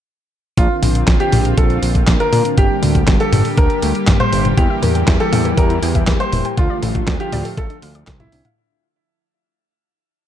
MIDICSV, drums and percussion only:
0, 0, Header, 1, 2, 480
1, 0, Start_track
1, 0, Key_signature, -1, "minor"
1, 0, Tempo, 500000
1, 553, Time_signature, 4, 2, 24, 8
1, 9861, End_track
2, 0, Start_track
2, 0, Title_t, "Drums"
2, 552, Note_on_c, 9, 36, 117
2, 552, Note_on_c, 9, 42, 84
2, 648, Note_off_c, 9, 36, 0
2, 648, Note_off_c, 9, 42, 0
2, 793, Note_on_c, 9, 46, 102
2, 793, Note_on_c, 9, 48, 58
2, 889, Note_off_c, 9, 46, 0
2, 889, Note_off_c, 9, 48, 0
2, 913, Note_on_c, 9, 42, 54
2, 1009, Note_off_c, 9, 42, 0
2, 1032, Note_on_c, 9, 36, 122
2, 1033, Note_on_c, 9, 38, 119
2, 1033, Note_on_c, 9, 39, 95
2, 1033, Note_on_c, 9, 42, 78
2, 1128, Note_off_c, 9, 36, 0
2, 1129, Note_off_c, 9, 38, 0
2, 1129, Note_off_c, 9, 39, 0
2, 1129, Note_off_c, 9, 42, 0
2, 1152, Note_on_c, 9, 42, 37
2, 1248, Note_off_c, 9, 42, 0
2, 1272, Note_on_c, 9, 46, 107
2, 1272, Note_on_c, 9, 48, 81
2, 1368, Note_off_c, 9, 46, 0
2, 1368, Note_off_c, 9, 48, 0
2, 1393, Note_on_c, 9, 42, 57
2, 1489, Note_off_c, 9, 42, 0
2, 1512, Note_on_c, 9, 36, 121
2, 1513, Note_on_c, 9, 42, 85
2, 1608, Note_off_c, 9, 36, 0
2, 1609, Note_off_c, 9, 42, 0
2, 1633, Note_on_c, 9, 42, 38
2, 1729, Note_off_c, 9, 42, 0
2, 1753, Note_on_c, 9, 46, 109
2, 1849, Note_off_c, 9, 46, 0
2, 1872, Note_on_c, 9, 36, 60
2, 1873, Note_on_c, 9, 42, 54
2, 1968, Note_off_c, 9, 36, 0
2, 1969, Note_off_c, 9, 42, 0
2, 1992, Note_on_c, 9, 36, 118
2, 1993, Note_on_c, 9, 38, 108
2, 1993, Note_on_c, 9, 39, 87
2, 1993, Note_on_c, 9, 42, 83
2, 2088, Note_off_c, 9, 36, 0
2, 2089, Note_off_c, 9, 38, 0
2, 2089, Note_off_c, 9, 39, 0
2, 2089, Note_off_c, 9, 42, 0
2, 2113, Note_on_c, 9, 42, 38
2, 2209, Note_off_c, 9, 42, 0
2, 2233, Note_on_c, 9, 46, 106
2, 2233, Note_on_c, 9, 48, 55
2, 2329, Note_off_c, 9, 46, 0
2, 2329, Note_off_c, 9, 48, 0
2, 2353, Note_on_c, 9, 42, 58
2, 2449, Note_off_c, 9, 42, 0
2, 2472, Note_on_c, 9, 36, 123
2, 2473, Note_on_c, 9, 42, 82
2, 2568, Note_off_c, 9, 36, 0
2, 2569, Note_off_c, 9, 42, 0
2, 2713, Note_on_c, 9, 46, 102
2, 2713, Note_on_c, 9, 48, 57
2, 2809, Note_off_c, 9, 46, 0
2, 2809, Note_off_c, 9, 48, 0
2, 2832, Note_on_c, 9, 36, 64
2, 2833, Note_on_c, 9, 42, 53
2, 2928, Note_off_c, 9, 36, 0
2, 2929, Note_off_c, 9, 42, 0
2, 2952, Note_on_c, 9, 36, 121
2, 2952, Note_on_c, 9, 38, 123
2, 2952, Note_on_c, 9, 39, 95
2, 2952, Note_on_c, 9, 42, 81
2, 3048, Note_off_c, 9, 36, 0
2, 3048, Note_off_c, 9, 38, 0
2, 3048, Note_off_c, 9, 39, 0
2, 3048, Note_off_c, 9, 42, 0
2, 3073, Note_on_c, 9, 42, 36
2, 3169, Note_off_c, 9, 42, 0
2, 3193, Note_on_c, 9, 46, 109
2, 3193, Note_on_c, 9, 48, 82
2, 3289, Note_off_c, 9, 46, 0
2, 3289, Note_off_c, 9, 48, 0
2, 3312, Note_on_c, 9, 46, 60
2, 3408, Note_off_c, 9, 46, 0
2, 3432, Note_on_c, 9, 36, 125
2, 3432, Note_on_c, 9, 42, 79
2, 3528, Note_off_c, 9, 36, 0
2, 3528, Note_off_c, 9, 42, 0
2, 3552, Note_on_c, 9, 42, 37
2, 3648, Note_off_c, 9, 42, 0
2, 3671, Note_on_c, 9, 46, 103
2, 3767, Note_off_c, 9, 46, 0
2, 3792, Note_on_c, 9, 42, 52
2, 3888, Note_off_c, 9, 42, 0
2, 3912, Note_on_c, 9, 36, 122
2, 3912, Note_on_c, 9, 38, 121
2, 3912, Note_on_c, 9, 39, 89
2, 3912, Note_on_c, 9, 42, 74
2, 4008, Note_off_c, 9, 36, 0
2, 4008, Note_off_c, 9, 38, 0
2, 4008, Note_off_c, 9, 39, 0
2, 4008, Note_off_c, 9, 42, 0
2, 4032, Note_on_c, 9, 42, 38
2, 4032, Note_on_c, 9, 48, 73
2, 4128, Note_off_c, 9, 42, 0
2, 4128, Note_off_c, 9, 48, 0
2, 4153, Note_on_c, 9, 46, 104
2, 4249, Note_off_c, 9, 46, 0
2, 4272, Note_on_c, 9, 42, 52
2, 4272, Note_on_c, 9, 48, 58
2, 4368, Note_off_c, 9, 42, 0
2, 4368, Note_off_c, 9, 48, 0
2, 4392, Note_on_c, 9, 36, 123
2, 4392, Note_on_c, 9, 42, 75
2, 4488, Note_off_c, 9, 36, 0
2, 4488, Note_off_c, 9, 42, 0
2, 4633, Note_on_c, 9, 46, 97
2, 4633, Note_on_c, 9, 48, 60
2, 4729, Note_off_c, 9, 46, 0
2, 4729, Note_off_c, 9, 48, 0
2, 4753, Note_on_c, 9, 42, 52
2, 4849, Note_off_c, 9, 42, 0
2, 4872, Note_on_c, 9, 36, 122
2, 4873, Note_on_c, 9, 38, 125
2, 4873, Note_on_c, 9, 39, 93
2, 4873, Note_on_c, 9, 42, 83
2, 4968, Note_off_c, 9, 36, 0
2, 4969, Note_off_c, 9, 38, 0
2, 4969, Note_off_c, 9, 39, 0
2, 4969, Note_off_c, 9, 42, 0
2, 4994, Note_on_c, 9, 42, 35
2, 5090, Note_off_c, 9, 42, 0
2, 5113, Note_on_c, 9, 46, 111
2, 5113, Note_on_c, 9, 48, 80
2, 5209, Note_off_c, 9, 46, 0
2, 5209, Note_off_c, 9, 48, 0
2, 5234, Note_on_c, 9, 42, 52
2, 5330, Note_off_c, 9, 42, 0
2, 5352, Note_on_c, 9, 36, 121
2, 5353, Note_on_c, 9, 42, 80
2, 5448, Note_off_c, 9, 36, 0
2, 5449, Note_off_c, 9, 42, 0
2, 5473, Note_on_c, 9, 42, 37
2, 5569, Note_off_c, 9, 42, 0
2, 5593, Note_on_c, 9, 46, 106
2, 5689, Note_off_c, 9, 46, 0
2, 5712, Note_on_c, 9, 36, 63
2, 5713, Note_on_c, 9, 42, 53
2, 5808, Note_off_c, 9, 36, 0
2, 5809, Note_off_c, 9, 42, 0
2, 5832, Note_on_c, 9, 36, 122
2, 5832, Note_on_c, 9, 38, 123
2, 5832, Note_on_c, 9, 39, 87
2, 5832, Note_on_c, 9, 42, 77
2, 5928, Note_off_c, 9, 36, 0
2, 5928, Note_off_c, 9, 38, 0
2, 5928, Note_off_c, 9, 39, 0
2, 5928, Note_off_c, 9, 42, 0
2, 5952, Note_on_c, 9, 42, 36
2, 6048, Note_off_c, 9, 42, 0
2, 6072, Note_on_c, 9, 46, 98
2, 6072, Note_on_c, 9, 48, 61
2, 6168, Note_off_c, 9, 46, 0
2, 6168, Note_off_c, 9, 48, 0
2, 6192, Note_on_c, 9, 42, 49
2, 6288, Note_off_c, 9, 42, 0
2, 6312, Note_on_c, 9, 36, 122
2, 6312, Note_on_c, 9, 42, 80
2, 6408, Note_off_c, 9, 36, 0
2, 6408, Note_off_c, 9, 42, 0
2, 6553, Note_on_c, 9, 46, 101
2, 6553, Note_on_c, 9, 48, 62
2, 6649, Note_off_c, 9, 46, 0
2, 6649, Note_off_c, 9, 48, 0
2, 6672, Note_on_c, 9, 36, 64
2, 6673, Note_on_c, 9, 42, 51
2, 6768, Note_off_c, 9, 36, 0
2, 6769, Note_off_c, 9, 42, 0
2, 6792, Note_on_c, 9, 36, 126
2, 6792, Note_on_c, 9, 38, 126
2, 6792, Note_on_c, 9, 39, 88
2, 6792, Note_on_c, 9, 42, 77
2, 6888, Note_off_c, 9, 36, 0
2, 6888, Note_off_c, 9, 38, 0
2, 6888, Note_off_c, 9, 39, 0
2, 6888, Note_off_c, 9, 42, 0
2, 6912, Note_on_c, 9, 42, 35
2, 7008, Note_off_c, 9, 42, 0
2, 7032, Note_on_c, 9, 46, 112
2, 7032, Note_on_c, 9, 48, 85
2, 7128, Note_off_c, 9, 46, 0
2, 7128, Note_off_c, 9, 48, 0
2, 7152, Note_on_c, 9, 46, 64
2, 7248, Note_off_c, 9, 46, 0
2, 7272, Note_on_c, 9, 36, 127
2, 7272, Note_on_c, 9, 42, 78
2, 7368, Note_off_c, 9, 36, 0
2, 7368, Note_off_c, 9, 42, 0
2, 7392, Note_on_c, 9, 42, 35
2, 7488, Note_off_c, 9, 42, 0
2, 7511, Note_on_c, 9, 46, 108
2, 7607, Note_off_c, 9, 46, 0
2, 7632, Note_on_c, 9, 42, 50
2, 7728, Note_off_c, 9, 42, 0
2, 7751, Note_on_c, 9, 38, 119
2, 7751, Note_on_c, 9, 39, 91
2, 7751, Note_on_c, 9, 42, 71
2, 7752, Note_on_c, 9, 36, 123
2, 7847, Note_off_c, 9, 38, 0
2, 7847, Note_off_c, 9, 39, 0
2, 7847, Note_off_c, 9, 42, 0
2, 7848, Note_off_c, 9, 36, 0
2, 7872, Note_on_c, 9, 42, 36
2, 7872, Note_on_c, 9, 48, 77
2, 7968, Note_off_c, 9, 42, 0
2, 7968, Note_off_c, 9, 48, 0
2, 7991, Note_on_c, 9, 46, 105
2, 8087, Note_off_c, 9, 46, 0
2, 8112, Note_on_c, 9, 42, 51
2, 8112, Note_on_c, 9, 48, 64
2, 8208, Note_off_c, 9, 42, 0
2, 8208, Note_off_c, 9, 48, 0
2, 9861, End_track
0, 0, End_of_file